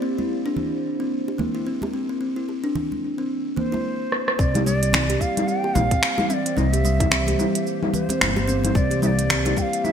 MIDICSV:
0, 0, Header, 1, 6, 480
1, 0, Start_track
1, 0, Tempo, 545455
1, 26, Time_signature, 4, 2, 24, 8
1, 8730, End_track
2, 0, Start_track
2, 0, Title_t, "Ney"
2, 0, Program_c, 0, 77
2, 3143, Note_on_c, 0, 72, 88
2, 3861, Note_on_c, 0, 74, 91
2, 3874, Note_off_c, 0, 72, 0
2, 4090, Note_off_c, 0, 74, 0
2, 4096, Note_on_c, 0, 74, 105
2, 4579, Note_on_c, 0, 77, 101
2, 4593, Note_off_c, 0, 74, 0
2, 4822, Note_on_c, 0, 79, 107
2, 4835, Note_off_c, 0, 77, 0
2, 5054, Note_on_c, 0, 77, 107
2, 5067, Note_off_c, 0, 79, 0
2, 5541, Note_on_c, 0, 76, 87
2, 5554, Note_off_c, 0, 77, 0
2, 5575, Note_on_c, 0, 74, 94
2, 5584, Note_off_c, 0, 76, 0
2, 5785, Note_on_c, 0, 75, 96
2, 5798, Note_off_c, 0, 74, 0
2, 5908, Note_off_c, 0, 75, 0
2, 5908, Note_on_c, 0, 76, 96
2, 6745, Note_off_c, 0, 76, 0
2, 6978, Note_on_c, 0, 72, 95
2, 7701, Note_on_c, 0, 74, 95
2, 7715, Note_off_c, 0, 72, 0
2, 7939, Note_off_c, 0, 74, 0
2, 7945, Note_on_c, 0, 76, 96
2, 7979, Note_on_c, 0, 74, 104
2, 7987, Note_off_c, 0, 76, 0
2, 8431, Note_on_c, 0, 79, 98
2, 8444, Note_off_c, 0, 74, 0
2, 8465, Note_on_c, 0, 77, 107
2, 8474, Note_off_c, 0, 79, 0
2, 8659, Note_on_c, 0, 76, 104
2, 8672, Note_off_c, 0, 77, 0
2, 8730, Note_off_c, 0, 76, 0
2, 8730, End_track
3, 0, Start_track
3, 0, Title_t, "Ambient pad"
3, 0, Program_c, 1, 92
3, 0, Note_on_c, 1, 58, 76
3, 0, Note_on_c, 1, 64, 67
3, 0, Note_on_c, 1, 67, 77
3, 0, Note_on_c, 1, 72, 83
3, 3346, Note_off_c, 1, 58, 0
3, 3348, Note_off_c, 1, 67, 0
3, 3348, Note_off_c, 1, 72, 0
3, 3349, Note_off_c, 1, 64, 0
3, 3861, Note_on_c, 1, 72, 99
3, 3864, Note_on_c, 1, 52, 81
3, 3864, Note_on_c, 1, 67, 82
3, 3865, Note_on_c, 1, 58, 88
3, 8730, Note_off_c, 1, 52, 0
3, 8730, Note_off_c, 1, 58, 0
3, 8730, Note_off_c, 1, 67, 0
3, 8730, Note_off_c, 1, 72, 0
3, 8730, End_track
4, 0, Start_track
4, 0, Title_t, "Kalimba"
4, 0, Program_c, 2, 108
4, 19, Note_on_c, 2, 60, 74
4, 148, Note_off_c, 2, 60, 0
4, 163, Note_on_c, 2, 64, 70
4, 259, Note_off_c, 2, 64, 0
4, 401, Note_on_c, 2, 62, 84
4, 460, Note_off_c, 2, 62, 0
4, 880, Note_on_c, 2, 60, 71
4, 1212, Note_off_c, 2, 60, 0
4, 1217, Note_on_c, 2, 58, 70
4, 1355, Note_off_c, 2, 58, 0
4, 1361, Note_on_c, 2, 64, 70
4, 1453, Note_off_c, 2, 64, 0
4, 1466, Note_on_c, 2, 60, 70
4, 1545, Note_off_c, 2, 60, 0
4, 1703, Note_on_c, 2, 60, 70
4, 1830, Note_off_c, 2, 60, 0
4, 1843, Note_on_c, 2, 60, 66
4, 1932, Note_off_c, 2, 60, 0
4, 1942, Note_on_c, 2, 60, 68
4, 2070, Note_off_c, 2, 60, 0
4, 2080, Note_on_c, 2, 64, 65
4, 2177, Note_off_c, 2, 64, 0
4, 2320, Note_on_c, 2, 62, 87
4, 2380, Note_off_c, 2, 62, 0
4, 2801, Note_on_c, 2, 60, 67
4, 3133, Note_off_c, 2, 60, 0
4, 3137, Note_on_c, 2, 58, 74
4, 3275, Note_off_c, 2, 58, 0
4, 3276, Note_on_c, 2, 64, 73
4, 3371, Note_off_c, 2, 64, 0
4, 3861, Note_on_c, 2, 60, 81
4, 3997, Note_off_c, 2, 60, 0
4, 4000, Note_on_c, 2, 67, 72
4, 4092, Note_off_c, 2, 67, 0
4, 4104, Note_on_c, 2, 55, 99
4, 4238, Note_off_c, 2, 55, 0
4, 4343, Note_on_c, 2, 60, 83
4, 4471, Note_off_c, 2, 60, 0
4, 4485, Note_on_c, 2, 67, 102
4, 4580, Note_off_c, 2, 67, 0
4, 4583, Note_on_c, 2, 64, 73
4, 5054, Note_off_c, 2, 64, 0
4, 5203, Note_on_c, 2, 60, 77
4, 5261, Note_off_c, 2, 60, 0
4, 5544, Note_on_c, 2, 60, 104
4, 5671, Note_off_c, 2, 60, 0
4, 5683, Note_on_c, 2, 60, 73
4, 5768, Note_off_c, 2, 60, 0
4, 5779, Note_on_c, 2, 60, 86
4, 5915, Note_off_c, 2, 60, 0
4, 5924, Note_on_c, 2, 67, 75
4, 6014, Note_off_c, 2, 67, 0
4, 6025, Note_on_c, 2, 55, 108
4, 6159, Note_off_c, 2, 55, 0
4, 6268, Note_on_c, 2, 60, 78
4, 6393, Note_off_c, 2, 60, 0
4, 6404, Note_on_c, 2, 67, 99
4, 6499, Note_off_c, 2, 67, 0
4, 6504, Note_on_c, 2, 64, 76
4, 6974, Note_off_c, 2, 64, 0
4, 7126, Note_on_c, 2, 60, 75
4, 7183, Note_off_c, 2, 60, 0
4, 7459, Note_on_c, 2, 60, 106
4, 7588, Note_off_c, 2, 60, 0
4, 7601, Note_on_c, 2, 60, 77
4, 7689, Note_off_c, 2, 60, 0
4, 7699, Note_on_c, 2, 60, 86
4, 7836, Note_off_c, 2, 60, 0
4, 7838, Note_on_c, 2, 67, 75
4, 7931, Note_off_c, 2, 67, 0
4, 7940, Note_on_c, 2, 55, 103
4, 8076, Note_off_c, 2, 55, 0
4, 8184, Note_on_c, 2, 60, 75
4, 8311, Note_off_c, 2, 60, 0
4, 8319, Note_on_c, 2, 67, 99
4, 8417, Note_off_c, 2, 67, 0
4, 8419, Note_on_c, 2, 64, 79
4, 8730, Note_off_c, 2, 64, 0
4, 8730, End_track
5, 0, Start_track
5, 0, Title_t, "Upright bass"
5, 0, Program_c, 3, 32
5, 3864, Note_on_c, 3, 36, 98
5, 4527, Note_off_c, 3, 36, 0
5, 5065, Note_on_c, 3, 34, 113
5, 5233, Note_off_c, 3, 34, 0
5, 5782, Note_on_c, 3, 36, 96
5, 6446, Note_off_c, 3, 36, 0
5, 7228, Note_on_c, 3, 31, 93
5, 7649, Note_off_c, 3, 31, 0
5, 7702, Note_on_c, 3, 36, 100
5, 8366, Note_off_c, 3, 36, 0
5, 8730, End_track
6, 0, Start_track
6, 0, Title_t, "Drums"
6, 166, Note_on_c, 9, 63, 58
6, 254, Note_off_c, 9, 63, 0
6, 497, Note_on_c, 9, 64, 80
6, 585, Note_off_c, 9, 64, 0
6, 1127, Note_on_c, 9, 60, 42
6, 1215, Note_off_c, 9, 60, 0
6, 1224, Note_on_c, 9, 64, 91
6, 1228, Note_on_c, 9, 63, 76
6, 1312, Note_off_c, 9, 64, 0
6, 1316, Note_off_c, 9, 63, 0
6, 1600, Note_on_c, 9, 63, 66
6, 1609, Note_on_c, 9, 60, 61
6, 1688, Note_off_c, 9, 63, 0
6, 1697, Note_off_c, 9, 60, 0
6, 2188, Note_on_c, 9, 60, 28
6, 2276, Note_off_c, 9, 60, 0
6, 2423, Note_on_c, 9, 64, 92
6, 2511, Note_off_c, 9, 64, 0
6, 2569, Note_on_c, 9, 63, 54
6, 2657, Note_off_c, 9, 63, 0
6, 3143, Note_on_c, 9, 64, 91
6, 3231, Note_off_c, 9, 64, 0
6, 3287, Note_on_c, 9, 60, 44
6, 3292, Note_on_c, 9, 63, 55
6, 3375, Note_off_c, 9, 60, 0
6, 3380, Note_off_c, 9, 63, 0
6, 3628, Note_on_c, 9, 37, 58
6, 3716, Note_off_c, 9, 37, 0
6, 3766, Note_on_c, 9, 37, 65
6, 3854, Note_off_c, 9, 37, 0
6, 3863, Note_on_c, 9, 36, 124
6, 3869, Note_on_c, 9, 82, 44
6, 3951, Note_off_c, 9, 36, 0
6, 3957, Note_off_c, 9, 82, 0
6, 4006, Note_on_c, 9, 42, 47
6, 4006, Note_on_c, 9, 64, 79
6, 4008, Note_on_c, 9, 82, 30
6, 4011, Note_on_c, 9, 63, 63
6, 4094, Note_off_c, 9, 42, 0
6, 4094, Note_off_c, 9, 64, 0
6, 4096, Note_off_c, 9, 82, 0
6, 4099, Note_off_c, 9, 63, 0
6, 4109, Note_on_c, 9, 82, 82
6, 4197, Note_off_c, 9, 82, 0
6, 4248, Note_on_c, 9, 42, 57
6, 4250, Note_on_c, 9, 82, 34
6, 4336, Note_off_c, 9, 42, 0
6, 4338, Note_off_c, 9, 82, 0
6, 4339, Note_on_c, 9, 64, 101
6, 4347, Note_off_c, 9, 64, 0
6, 4347, Note_on_c, 9, 26, 106
6, 4347, Note_on_c, 9, 64, 78
6, 4349, Note_on_c, 9, 82, 45
6, 4435, Note_off_c, 9, 26, 0
6, 4435, Note_off_c, 9, 64, 0
6, 4437, Note_off_c, 9, 82, 0
6, 4486, Note_on_c, 9, 42, 47
6, 4488, Note_on_c, 9, 82, 29
6, 4574, Note_off_c, 9, 42, 0
6, 4576, Note_off_c, 9, 82, 0
6, 4583, Note_on_c, 9, 36, 58
6, 4587, Note_on_c, 9, 82, 73
6, 4671, Note_off_c, 9, 36, 0
6, 4675, Note_off_c, 9, 82, 0
6, 4728, Note_on_c, 9, 42, 57
6, 4728, Note_on_c, 9, 64, 78
6, 4730, Note_on_c, 9, 82, 34
6, 4816, Note_off_c, 9, 42, 0
6, 4816, Note_off_c, 9, 64, 0
6, 4818, Note_off_c, 9, 82, 0
6, 4824, Note_on_c, 9, 82, 46
6, 4912, Note_off_c, 9, 82, 0
6, 4963, Note_on_c, 9, 60, 53
6, 5051, Note_off_c, 9, 60, 0
6, 5061, Note_on_c, 9, 64, 81
6, 5063, Note_on_c, 9, 63, 85
6, 5063, Note_on_c, 9, 82, 77
6, 5066, Note_off_c, 9, 64, 0
6, 5066, Note_on_c, 9, 64, 95
6, 5151, Note_off_c, 9, 63, 0
6, 5151, Note_off_c, 9, 82, 0
6, 5154, Note_off_c, 9, 64, 0
6, 5203, Note_on_c, 9, 36, 102
6, 5204, Note_on_c, 9, 42, 60
6, 5206, Note_on_c, 9, 82, 33
6, 5291, Note_off_c, 9, 36, 0
6, 5292, Note_off_c, 9, 42, 0
6, 5294, Note_off_c, 9, 82, 0
6, 5304, Note_on_c, 9, 26, 113
6, 5306, Note_on_c, 9, 82, 46
6, 5392, Note_off_c, 9, 26, 0
6, 5394, Note_off_c, 9, 82, 0
6, 5437, Note_on_c, 9, 60, 68
6, 5438, Note_on_c, 9, 63, 84
6, 5446, Note_on_c, 9, 64, 81
6, 5448, Note_on_c, 9, 82, 31
6, 5525, Note_off_c, 9, 60, 0
6, 5526, Note_off_c, 9, 63, 0
6, 5534, Note_off_c, 9, 64, 0
6, 5536, Note_off_c, 9, 82, 0
6, 5545, Note_on_c, 9, 82, 78
6, 5633, Note_off_c, 9, 82, 0
6, 5685, Note_on_c, 9, 42, 58
6, 5687, Note_on_c, 9, 82, 33
6, 5773, Note_off_c, 9, 42, 0
6, 5775, Note_off_c, 9, 82, 0
6, 5785, Note_on_c, 9, 64, 83
6, 5787, Note_on_c, 9, 82, 48
6, 5873, Note_off_c, 9, 64, 0
6, 5875, Note_off_c, 9, 82, 0
6, 5927, Note_on_c, 9, 42, 47
6, 5929, Note_on_c, 9, 82, 32
6, 6015, Note_off_c, 9, 42, 0
6, 6017, Note_off_c, 9, 82, 0
6, 6018, Note_on_c, 9, 60, 31
6, 6029, Note_on_c, 9, 82, 86
6, 6106, Note_off_c, 9, 60, 0
6, 6117, Note_off_c, 9, 82, 0
6, 6163, Note_on_c, 9, 36, 105
6, 6164, Note_on_c, 9, 42, 54
6, 6164, Note_on_c, 9, 64, 74
6, 6166, Note_on_c, 9, 82, 33
6, 6251, Note_off_c, 9, 36, 0
6, 6252, Note_off_c, 9, 42, 0
6, 6252, Note_off_c, 9, 64, 0
6, 6254, Note_off_c, 9, 82, 0
6, 6257, Note_on_c, 9, 64, 109
6, 6262, Note_on_c, 9, 26, 106
6, 6264, Note_on_c, 9, 82, 48
6, 6345, Note_off_c, 9, 64, 0
6, 6350, Note_off_c, 9, 26, 0
6, 6352, Note_off_c, 9, 82, 0
6, 6395, Note_on_c, 9, 63, 69
6, 6407, Note_on_c, 9, 42, 47
6, 6409, Note_on_c, 9, 82, 32
6, 6483, Note_off_c, 9, 63, 0
6, 6495, Note_off_c, 9, 42, 0
6, 6497, Note_off_c, 9, 82, 0
6, 6506, Note_on_c, 9, 64, 77
6, 6508, Note_on_c, 9, 82, 83
6, 6594, Note_off_c, 9, 64, 0
6, 6596, Note_off_c, 9, 82, 0
6, 6646, Note_on_c, 9, 42, 56
6, 6648, Note_on_c, 9, 82, 32
6, 6734, Note_off_c, 9, 42, 0
6, 6736, Note_off_c, 9, 82, 0
6, 6747, Note_on_c, 9, 82, 44
6, 6835, Note_off_c, 9, 82, 0
6, 6887, Note_on_c, 9, 64, 76
6, 6975, Note_off_c, 9, 64, 0
6, 6983, Note_on_c, 9, 64, 95
6, 6986, Note_on_c, 9, 82, 81
6, 7071, Note_off_c, 9, 64, 0
6, 7074, Note_off_c, 9, 82, 0
6, 7118, Note_on_c, 9, 63, 73
6, 7124, Note_on_c, 9, 60, 54
6, 7129, Note_on_c, 9, 42, 56
6, 7131, Note_on_c, 9, 82, 37
6, 7206, Note_off_c, 9, 63, 0
6, 7212, Note_off_c, 9, 60, 0
6, 7217, Note_off_c, 9, 42, 0
6, 7219, Note_off_c, 9, 82, 0
6, 7228, Note_on_c, 9, 26, 110
6, 7228, Note_on_c, 9, 64, 73
6, 7230, Note_on_c, 9, 82, 48
6, 7316, Note_off_c, 9, 26, 0
6, 7316, Note_off_c, 9, 64, 0
6, 7318, Note_off_c, 9, 82, 0
6, 7359, Note_on_c, 9, 60, 74
6, 7365, Note_on_c, 9, 63, 94
6, 7369, Note_on_c, 9, 82, 32
6, 7447, Note_off_c, 9, 60, 0
6, 7453, Note_off_c, 9, 63, 0
6, 7457, Note_off_c, 9, 82, 0
6, 7468, Note_on_c, 9, 82, 81
6, 7556, Note_off_c, 9, 82, 0
6, 7608, Note_on_c, 9, 42, 52
6, 7608, Note_on_c, 9, 64, 70
6, 7610, Note_on_c, 9, 82, 33
6, 7696, Note_off_c, 9, 42, 0
6, 7696, Note_off_c, 9, 64, 0
6, 7698, Note_off_c, 9, 82, 0
6, 7701, Note_on_c, 9, 36, 127
6, 7708, Note_on_c, 9, 82, 50
6, 7789, Note_off_c, 9, 36, 0
6, 7796, Note_off_c, 9, 82, 0
6, 7841, Note_on_c, 9, 63, 55
6, 7843, Note_on_c, 9, 42, 43
6, 7845, Note_on_c, 9, 82, 35
6, 7929, Note_off_c, 9, 63, 0
6, 7931, Note_off_c, 9, 42, 0
6, 7933, Note_off_c, 9, 82, 0
6, 7943, Note_on_c, 9, 64, 74
6, 7945, Note_on_c, 9, 82, 88
6, 8031, Note_off_c, 9, 64, 0
6, 8033, Note_off_c, 9, 82, 0
6, 8084, Note_on_c, 9, 42, 50
6, 8086, Note_on_c, 9, 82, 36
6, 8172, Note_off_c, 9, 42, 0
6, 8174, Note_off_c, 9, 82, 0
6, 8181, Note_on_c, 9, 64, 106
6, 8185, Note_on_c, 9, 26, 112
6, 8187, Note_on_c, 9, 82, 49
6, 8269, Note_off_c, 9, 64, 0
6, 8273, Note_off_c, 9, 26, 0
6, 8275, Note_off_c, 9, 82, 0
6, 8324, Note_on_c, 9, 42, 44
6, 8324, Note_on_c, 9, 64, 76
6, 8326, Note_on_c, 9, 82, 35
6, 8412, Note_off_c, 9, 42, 0
6, 8412, Note_off_c, 9, 64, 0
6, 8414, Note_off_c, 9, 82, 0
6, 8422, Note_on_c, 9, 36, 64
6, 8425, Note_on_c, 9, 82, 76
6, 8510, Note_off_c, 9, 36, 0
6, 8513, Note_off_c, 9, 82, 0
6, 8566, Note_on_c, 9, 42, 50
6, 8568, Note_on_c, 9, 82, 34
6, 8654, Note_off_c, 9, 42, 0
6, 8656, Note_off_c, 9, 82, 0
6, 8664, Note_on_c, 9, 64, 73
6, 8666, Note_on_c, 9, 82, 46
6, 8730, Note_off_c, 9, 64, 0
6, 8730, Note_off_c, 9, 82, 0
6, 8730, End_track
0, 0, End_of_file